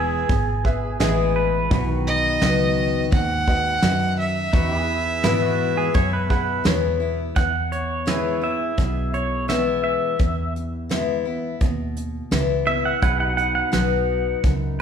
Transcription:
Already playing: fingered electric bass E1, steel-string acoustic guitar E2 E3 G#3 B3 E4, pedal steel guitar E4 G#4 B4, fiddle E5
0.29 fingered electric bass G#1, steel-string acoustic guitar B2, kick, open hi-hat
0.64 upright piano G#4 B4 E5, kick
0.99 fingered electric bass A1, steel-string acoustic guitar E3 G#3 B3 E4, upright piano G#4 B4 D#5, pedal steel guitar G#4, snare, open hi-hat
1.36 pedal steel guitar B4
1.71 fingered electric bass B1, steel-string acoustic guitar B2, pedal steel guitar E3 F#4 B4, kick, open hi-hat
1.91 pedal steel guitar D#3
2.07 fiddle D#5
2.41 fingered electric bass C#2, steel-string acoustic guitar F#3 B3 D#4 F#4, upright piano F#4 B4 D#5, snare, open hi-hat
3.12 fingered electric bass D#2, steel-string acoustic guitar G#2, fiddle F#5, kick, open hi-hat
3.48 upright piano F#4 B4 D#5, kick
3.82 steel-string acoustic guitar F#2, fingered electric bass F#2, upright piano F#4 B4 D#5, snare, open hi-hat
4.19 fiddle E5
4.53 steel-string acoustic guitar E2, fingered electric bass E2, pedal steel guitar D#4 F#4 B4, kick, open hi-hat
4.73 pedal steel guitar E4
4.79 pedal steel guitar G#4
5.23 fingered electric bass G#2, steel-string acoustic guitar E3 G#3 B3 E4, pedal steel guitar E4, upright piano G#4 B4 E5, snare, open hi-hat
5.42 pedal steel guitar F#4
5.77 pedal steel guitar G#4
5.94 fingered electric bass F#2, steel-string acoustic guitar B2, pedal steel guitar C#5, kick, open hi-hat
6.13 pedal steel guitar B4
6.29 upright piano G#4 B4 F#5, pedal steel guitar B4, kick
6.64 fingered electric bass E2, steel-string acoustic guitar E3 G#3 B3 E4, upright piano G#4 B4 C#5, snare, open hi-hat
7.00 steel-string acoustic guitar B3 E4
7.36 steel-string acoustic guitar E2, fingered electric bass E2, pedal steel guitar F#5, kick, closed hi-hat
7.72 pedal steel guitar C#5, closed hi-hat
8.06 steel-string acoustic guitar E3 G#3 B3 E4, pedal steel guitar E4 G#4 B4, snare, closed hi-hat
8.41 steel-string acoustic guitar B3 E4, pedal steel guitar E5
8.78 fingered electric bass B1, steel-string acoustic guitar B2, kick, closed hi-hat
9.14 pedal steel guitar C#5, closed hi-hat
9.48 steel-string acoustic guitar E3 G#3 B3 E4, pedal steel guitar E5, snare, closed hi-hat
9.84 pedal steel guitar E5
10.20 fingered electric bass E2, kick, closed hi-hat
10.56 closed hi-hat
10.89 steel-string acoustic guitar E3 G#3 B3 E4, snare, closed hi-hat
11.25 steel-string acoustic guitar B3 E4
11.61 fingered electric bass D#2, steel-string acoustic guitar B2, kick, closed hi-hat
11.97 closed hi-hat
12.31 fingered electric bass C#2, steel-string acoustic guitar E3 G#3 B3 E4, snare, closed hi-hat
12.66 steel-string acoustic guitar B3 E4, pedal steel guitar E5
12.85 pedal steel guitar F#5
13.02 fingered electric bass B1, steel-string acoustic guitar B2, pedal steel guitar E4 G#4 B4 F#5, kick, closed hi-hat
13.20 pedal steel guitar D#4 F#5
13.28 pedal steel guitar F#4
13.37 pedal steel guitar F#5, closed hi-hat
13.55 pedal steel guitar F#5
13.72 fingered electric bass B1, steel-string acoustic guitar F#3 B3 D#4 F#4, pedal steel guitar F#5, snare, closed hi-hat
14.44 fingered electric bass C#2, steel-string acoustic guitar F#2, kick, closed hi-hat

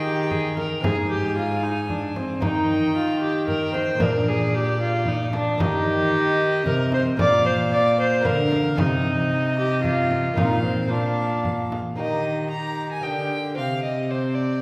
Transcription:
Already playing: lute D#3 A#3 D#4 G4, cello D#3, violin G5
0.04 viola G4
0.31 viola G#4, frame drum
0.57 viola A#4, frame drum
0.80 cello G#2, lute G#2 G#3 C4 D#4, viola G#4, violin G#5, frame drum
1.10 viola G4
1.36 viola F4
1.63 viola D#4
1.90 viola D4, frame drum
2.16 viola C4, frame drum
2.41 cello D#3, lute D#3 A#3 D#4, viola D#4, violin G5, frame drum
2.95 viola F4
3.21 viola G4
3.48 viola A#4, violin G5, frame drum
3.74 viola C5, frame drum
3.99 cello A#2, lute A#2 A#3 D4, viola A#4, frame drum
4.03 violin D5
4.28 viola G#4
4.55 viola G4
4.81 viola F4
5.06 viola D#4, frame drum
5.33 viola D4, frame drum
5.58 cello D#3, lute D#3 A#3 D#4, viola G4, frame drum
5.62 violin D#5
6.66 cello C3, lute C3, viola A#4, frame drum
6.92 viola C5, frame drum
7.16 cello A#2, lute A#2 A#3 F4, viola D5, frame drum
7.21 violin F5
7.46 viola C5
7.72 viola D5
8.00 viola C5
8.21 cello D3, lute A#3 F4
8.25 lute D3, viola A#4, violin F5, frame drum
8.52 frame drum
8.76 lute C3 D#4, cello C3, viola D#4, violin D#5, frame drum
9.58 viola G4
9.83 viola F4, frame drum
10.11 frame drum
10.34 cello A#2, lute A#3 D#4 F4, viola D#4, violin F5, frame drum
10.38 lute A#2
10.63 viola C4
10.88 cello A#2, lute A#3 F4, viola D4
10.92 lute A#2, violin F5
11.45 frame drum
11.72 frame drum
11.96 cello D#3, lute D#3 A#3 D#4 G4, violin D#5
12.00 viola G4
12.51 viola G4, violin A#5
12.92 violin G#5
13.01 lute D3 A#3 G4 D#5, cello D3, violin G5
13.06 viola G4
13.54 cello C3, lute C3 C4 G4, violin F5
13.59 viola G4
13.84 violin D#5
14.11 viola G4, violin C5
14.35 violin D5

